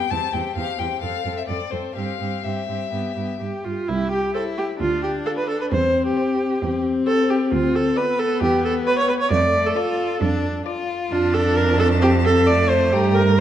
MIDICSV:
0, 0, Header, 1, 5, 480
1, 0, Start_track
1, 0, Key_signature, 0, "major"
1, 0, Tempo, 459418
1, 117, Time_signature, 4, 2, 24, 8
1, 1559, Tempo, 475436
1, 4439, Tempo, 452148
1, 14056, End_track
2, 0, Start_track
2, 0, Title_t, "Violin"
2, 0, Program_c, 0, 40
2, 0, Note_on_c, 0, 79, 66
2, 110, Note_on_c, 0, 81, 70
2, 125, Note_off_c, 0, 79, 0
2, 340, Note_on_c, 0, 79, 56
2, 355, Note_off_c, 0, 81, 0
2, 576, Note_off_c, 0, 79, 0
2, 582, Note_on_c, 0, 77, 68
2, 824, Note_on_c, 0, 79, 61
2, 840, Note_off_c, 0, 77, 0
2, 1055, Note_off_c, 0, 79, 0
2, 1061, Note_on_c, 0, 77, 59
2, 1423, Note_off_c, 0, 77, 0
2, 1434, Note_on_c, 0, 76, 48
2, 1483, Note_off_c, 0, 76, 0
2, 1542, Note_on_c, 0, 74, 52
2, 1777, Note_on_c, 0, 72, 49
2, 1792, Note_off_c, 0, 74, 0
2, 2021, Note_off_c, 0, 72, 0
2, 2027, Note_on_c, 0, 77, 56
2, 2507, Note_on_c, 0, 76, 51
2, 2522, Note_off_c, 0, 77, 0
2, 3486, Note_off_c, 0, 76, 0
2, 4439, Note_on_c, 0, 72, 56
2, 4799, Note_off_c, 0, 72, 0
2, 5409, Note_on_c, 0, 77, 60
2, 5769, Note_off_c, 0, 77, 0
2, 6376, Note_on_c, 0, 72, 65
2, 6729, Note_off_c, 0, 72, 0
2, 7332, Note_on_c, 0, 72, 67
2, 7687, Note_off_c, 0, 72, 0
2, 8278, Note_on_c, 0, 74, 67
2, 8634, Note_off_c, 0, 74, 0
2, 9238, Note_on_c, 0, 73, 72
2, 9591, Note_off_c, 0, 73, 0
2, 10192, Note_on_c, 0, 74, 79
2, 10549, Note_off_c, 0, 74, 0
2, 11142, Note_on_c, 0, 74, 78
2, 11503, Note_off_c, 0, 74, 0
2, 11631, Note_on_c, 0, 81, 80
2, 13510, Note_off_c, 0, 81, 0
2, 13560, Note_on_c, 0, 82, 68
2, 14056, Note_off_c, 0, 82, 0
2, 14056, End_track
3, 0, Start_track
3, 0, Title_t, "Viola"
3, 0, Program_c, 1, 41
3, 0, Note_on_c, 1, 59, 39
3, 111, Note_off_c, 1, 59, 0
3, 118, Note_on_c, 1, 60, 45
3, 348, Note_off_c, 1, 60, 0
3, 354, Note_on_c, 1, 60, 38
3, 589, Note_off_c, 1, 60, 0
3, 597, Note_on_c, 1, 60, 37
3, 827, Note_off_c, 1, 60, 0
3, 833, Note_on_c, 1, 60, 40
3, 1070, Note_off_c, 1, 60, 0
3, 1077, Note_on_c, 1, 60, 40
3, 1308, Note_off_c, 1, 60, 0
3, 1315, Note_on_c, 1, 60, 37
3, 1547, Note_off_c, 1, 60, 0
3, 1554, Note_on_c, 1, 60, 37
3, 1786, Note_off_c, 1, 60, 0
3, 1792, Note_on_c, 1, 60, 35
3, 2031, Note_off_c, 1, 60, 0
3, 2037, Note_on_c, 1, 60, 36
3, 2277, Note_off_c, 1, 60, 0
3, 2283, Note_on_c, 1, 60, 31
3, 2520, Note_off_c, 1, 60, 0
3, 2524, Note_on_c, 1, 60, 31
3, 2755, Note_off_c, 1, 60, 0
3, 2761, Note_on_c, 1, 60, 37
3, 3002, Note_off_c, 1, 60, 0
3, 3007, Note_on_c, 1, 59, 35
3, 3246, Note_off_c, 1, 59, 0
3, 3254, Note_on_c, 1, 59, 37
3, 3485, Note_off_c, 1, 59, 0
3, 3491, Note_on_c, 1, 67, 56
3, 3731, Note_on_c, 1, 65, 58
3, 3747, Note_off_c, 1, 67, 0
3, 3974, Note_on_c, 1, 64, 71
3, 3989, Note_off_c, 1, 65, 0
3, 4202, Note_off_c, 1, 64, 0
3, 4208, Note_on_c, 1, 67, 68
3, 4434, Note_off_c, 1, 67, 0
3, 4443, Note_on_c, 1, 69, 65
3, 4528, Note_off_c, 1, 69, 0
3, 4687, Note_on_c, 1, 67, 73
3, 4772, Note_off_c, 1, 67, 0
3, 4928, Note_on_c, 1, 65, 75
3, 5160, Note_off_c, 1, 65, 0
3, 5167, Note_on_c, 1, 67, 67
3, 5251, Note_off_c, 1, 67, 0
3, 5412, Note_on_c, 1, 69, 80
3, 5460, Note_off_c, 1, 69, 0
3, 5537, Note_on_c, 1, 71, 71
3, 5648, Note_off_c, 1, 71, 0
3, 5655, Note_on_c, 1, 69, 71
3, 5771, Note_off_c, 1, 69, 0
3, 5784, Note_on_c, 1, 71, 74
3, 5829, Note_off_c, 1, 71, 0
3, 5898, Note_on_c, 1, 72, 76
3, 6248, Note_off_c, 1, 72, 0
3, 6259, Note_on_c, 1, 67, 72
3, 7074, Note_off_c, 1, 67, 0
3, 7331, Note_on_c, 1, 69, 97
3, 7577, Note_on_c, 1, 67, 77
3, 7593, Note_off_c, 1, 69, 0
3, 7812, Note_off_c, 1, 67, 0
3, 7817, Note_on_c, 1, 65, 85
3, 8055, Note_on_c, 1, 69, 80
3, 8071, Note_off_c, 1, 65, 0
3, 8289, Note_on_c, 1, 71, 80
3, 8305, Note_off_c, 1, 69, 0
3, 8521, Note_on_c, 1, 69, 93
3, 8537, Note_off_c, 1, 71, 0
3, 8760, Note_off_c, 1, 69, 0
3, 8769, Note_on_c, 1, 67, 84
3, 8999, Note_off_c, 1, 67, 0
3, 9008, Note_on_c, 1, 69, 96
3, 9093, Note_off_c, 1, 69, 0
3, 9241, Note_on_c, 1, 71, 102
3, 9356, Note_off_c, 1, 71, 0
3, 9365, Note_on_c, 1, 73, 92
3, 9472, Note_off_c, 1, 73, 0
3, 9478, Note_on_c, 1, 71, 86
3, 9525, Note_off_c, 1, 71, 0
3, 9596, Note_on_c, 1, 73, 100
3, 9708, Note_off_c, 1, 73, 0
3, 9714, Note_on_c, 1, 74, 90
3, 10078, Note_on_c, 1, 69, 85
3, 10094, Note_off_c, 1, 74, 0
3, 10914, Note_off_c, 1, 69, 0
3, 11622, Note_on_c, 1, 65, 87
3, 11863, Note_on_c, 1, 69, 89
3, 11879, Note_off_c, 1, 65, 0
3, 12104, Note_on_c, 1, 70, 93
3, 12120, Note_off_c, 1, 69, 0
3, 12337, Note_off_c, 1, 70, 0
3, 12343, Note_on_c, 1, 69, 100
3, 12428, Note_off_c, 1, 69, 0
3, 12584, Note_on_c, 1, 67, 96
3, 12669, Note_off_c, 1, 67, 0
3, 12829, Note_on_c, 1, 69, 107
3, 13067, Note_on_c, 1, 74, 100
3, 13083, Note_off_c, 1, 69, 0
3, 13300, Note_on_c, 1, 72, 86
3, 13316, Note_off_c, 1, 74, 0
3, 13549, Note_on_c, 1, 67, 94
3, 13565, Note_off_c, 1, 72, 0
3, 13785, Note_on_c, 1, 70, 98
3, 13801, Note_off_c, 1, 67, 0
3, 14051, Note_off_c, 1, 70, 0
3, 14056, End_track
4, 0, Start_track
4, 0, Title_t, "Violin"
4, 0, Program_c, 2, 40
4, 0, Note_on_c, 2, 67, 46
4, 107, Note_off_c, 2, 67, 0
4, 112, Note_on_c, 2, 67, 45
4, 334, Note_off_c, 2, 67, 0
4, 340, Note_on_c, 2, 67, 41
4, 582, Note_off_c, 2, 67, 0
4, 590, Note_on_c, 2, 67, 42
4, 811, Note_off_c, 2, 67, 0
4, 817, Note_on_c, 2, 67, 36
4, 1061, Note_off_c, 2, 67, 0
4, 1068, Note_on_c, 2, 69, 46
4, 1301, Note_off_c, 2, 69, 0
4, 1307, Note_on_c, 2, 69, 38
4, 1537, Note_off_c, 2, 69, 0
4, 1544, Note_on_c, 2, 69, 41
4, 1780, Note_off_c, 2, 69, 0
4, 1786, Note_on_c, 2, 69, 36
4, 2020, Note_off_c, 2, 69, 0
4, 2026, Note_on_c, 2, 67, 38
4, 2265, Note_off_c, 2, 67, 0
4, 2271, Note_on_c, 2, 67, 37
4, 2509, Note_off_c, 2, 67, 0
4, 2516, Note_on_c, 2, 67, 37
4, 2747, Note_off_c, 2, 67, 0
4, 2753, Note_on_c, 2, 67, 35
4, 2996, Note_off_c, 2, 67, 0
4, 3002, Note_on_c, 2, 67, 41
4, 3242, Note_off_c, 2, 67, 0
4, 3248, Note_on_c, 2, 67, 35
4, 3481, Note_off_c, 2, 67, 0
4, 3487, Note_on_c, 2, 67, 37
4, 3728, Note_off_c, 2, 67, 0
4, 3732, Note_on_c, 2, 67, 36
4, 3961, Note_off_c, 2, 67, 0
4, 3967, Note_on_c, 2, 67, 56
4, 4402, Note_off_c, 2, 67, 0
4, 4430, Note_on_c, 2, 64, 66
4, 4909, Note_off_c, 2, 64, 0
4, 4914, Note_on_c, 2, 62, 66
4, 5886, Note_on_c, 2, 60, 65
4, 5902, Note_off_c, 2, 62, 0
4, 6846, Note_off_c, 2, 60, 0
4, 6857, Note_on_c, 2, 60, 73
4, 8289, Note_on_c, 2, 59, 90
4, 8305, Note_off_c, 2, 60, 0
4, 9706, Note_off_c, 2, 59, 0
4, 9712, Note_on_c, 2, 57, 74
4, 10180, Note_on_c, 2, 65, 89
4, 10196, Note_off_c, 2, 57, 0
4, 10662, Note_off_c, 2, 65, 0
4, 10668, Note_on_c, 2, 62, 82
4, 11139, Note_off_c, 2, 62, 0
4, 11145, Note_on_c, 2, 65, 88
4, 11628, Note_on_c, 2, 62, 90
4, 11644, Note_off_c, 2, 65, 0
4, 12588, Note_on_c, 2, 60, 73
4, 12604, Note_off_c, 2, 62, 0
4, 13058, Note_off_c, 2, 60, 0
4, 13064, Note_on_c, 2, 57, 82
4, 14012, Note_off_c, 2, 57, 0
4, 14056, End_track
5, 0, Start_track
5, 0, Title_t, "Cello"
5, 0, Program_c, 3, 42
5, 116, Note_on_c, 3, 40, 49
5, 200, Note_off_c, 3, 40, 0
5, 355, Note_on_c, 3, 40, 45
5, 438, Note_off_c, 3, 40, 0
5, 592, Note_on_c, 3, 40, 44
5, 676, Note_off_c, 3, 40, 0
5, 832, Note_on_c, 3, 40, 44
5, 916, Note_off_c, 3, 40, 0
5, 1071, Note_on_c, 3, 41, 45
5, 1154, Note_off_c, 3, 41, 0
5, 1311, Note_on_c, 3, 41, 39
5, 1394, Note_off_c, 3, 41, 0
5, 1558, Note_on_c, 3, 41, 40
5, 1639, Note_off_c, 3, 41, 0
5, 1790, Note_on_c, 3, 41, 36
5, 1871, Note_off_c, 3, 41, 0
5, 2037, Note_on_c, 3, 43, 46
5, 2117, Note_off_c, 3, 43, 0
5, 2284, Note_on_c, 3, 43, 40
5, 2365, Note_off_c, 3, 43, 0
5, 2525, Note_on_c, 3, 43, 40
5, 2606, Note_off_c, 3, 43, 0
5, 2765, Note_on_c, 3, 43, 37
5, 2846, Note_off_c, 3, 43, 0
5, 3003, Note_on_c, 3, 43, 36
5, 3084, Note_off_c, 3, 43, 0
5, 3248, Note_on_c, 3, 43, 34
5, 3329, Note_off_c, 3, 43, 0
5, 3489, Note_on_c, 3, 43, 38
5, 3570, Note_off_c, 3, 43, 0
5, 3737, Note_on_c, 3, 43, 33
5, 3818, Note_off_c, 3, 43, 0
5, 3981, Note_on_c, 3, 36, 71
5, 4345, Note_off_c, 3, 36, 0
5, 4922, Note_on_c, 3, 38, 67
5, 5307, Note_off_c, 3, 38, 0
5, 5899, Note_on_c, 3, 40, 72
5, 6275, Note_off_c, 3, 40, 0
5, 6854, Note_on_c, 3, 40, 68
5, 7229, Note_off_c, 3, 40, 0
5, 7810, Note_on_c, 3, 38, 79
5, 8184, Note_off_c, 3, 38, 0
5, 8758, Note_on_c, 3, 40, 74
5, 9137, Note_off_c, 3, 40, 0
5, 9707, Note_on_c, 3, 41, 89
5, 10088, Note_off_c, 3, 41, 0
5, 10668, Note_on_c, 3, 41, 81
5, 11048, Note_off_c, 3, 41, 0
5, 11630, Note_on_c, 3, 41, 87
5, 13551, Note_on_c, 3, 43, 82
5, 13567, Note_off_c, 3, 41, 0
5, 14056, Note_off_c, 3, 43, 0
5, 14056, End_track
0, 0, End_of_file